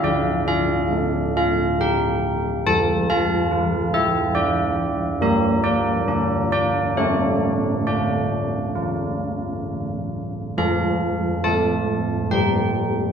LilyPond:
<<
  \new Staff \with { instrumentName = "Church bells" } { \time 3/4 \key d \minor \tempo 4 = 69 << { d''8 f''4 f''8 g''4 | a''8 f''4 e''8 d''4 | bes'8 d''4 d''8 cis''4 | d''2 r4 |
\key f \major f''4 a''4 g''4 | } \\ { r2. | r2. | r2. | r2. |
a'2. | } >> }
  \new Staff \with { instrumentName = "Church bells" } { \time 3/4 \key d \minor d4 a2 | f4 f'2 | g4 <d' bes'>4 <a g' a'>4 | d'4 f'2 |
\key f \major f4 a4 g4 | }
>>